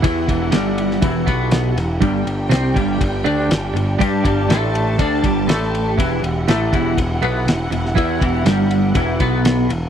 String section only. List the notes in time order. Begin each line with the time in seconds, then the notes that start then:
Already playing: E4 G4 F#5
2.03 D4 G5
4.00 A5
5.98 E4 F#5